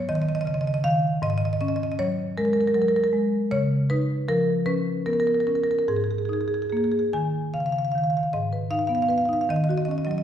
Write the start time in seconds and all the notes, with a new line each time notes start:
Already playing: G#2 F#3
0.09 D#3 D#5
0.15 D#5
0.22 D#5
0.29 D#5
0.35 D#5
0.41 D#5
0.45 C#3 D#5
0.54 D#5
0.61 D#5
0.67 D#5
0.74 D#5
0.84 D#3 F5
1.22 G#2 D#5
1.30 D#5
1.38 D#5
1.45 D#5
1.53 D#5
1.61 C#4 D#5
1.68 D#5
1.76 D#5
1.83 D#5
1.92 D#5
1.99 F#3 C#5
2.38 G#3 A#4
2.45 A#4
2.53 A#4
2.61 A#4
2.67 A#4
2.74 F#3 A#4
2.82 A#4
2.88 A#4
2.96 A#4
3.04 A#4
3.13 G#3
3.51 C#3 C#5
3.90 D#4 B4
4.28 F3 A#4
4.66 C#4 B4
5.06 B3 A#4
5.13 A#4
5.20 A#4
5.27 A#4
5.34 A#4
5.40 A#4
5.47 C#4 A#4
5.55 A#4
5.63 A#4
5.71 A#4
5.79 A#4
5.88 G#2 G#4
5.97 G#4
6.04 G#4
6.11 G#4
6.18 G#4
6.25 D#4 G#4
6.33 G#4
6.41 G#4
6.48 G#4
6.54 G#4
6.62 G#4
6.70 A#3 G#4
6.77 G#4
6.84 G#4
6.92 G#4
6.99 G#4
7.13 D#3 G#5
7.54 C#3 F5
7.60 F5
7.66 F5
7.72 F5
7.78 F5
7.85 F5
7.92 D#3 F5
7.98 F5
8.04 F5
8.10 F5
8.17 F5
8.23 F5
8.33 G#2 D#5
8.53 B4
8.70 D#4 F5
8.79 F5
8.87 B3 F5
8.95 F5
9.02 F5
9.09 B4 F5
9.18 F5
9.25 D#4 F5
9.33 F5
9.41 F5
9.49 D#3 D#5
9.56 D#5
9.64 D#5
9.69 F#4 D#5
9.78 D#5
9.85 C#4 D#5
9.91 D#5
9.98 D#5
10.05 F#3 D#5
10.11 D#5
10.18 D#5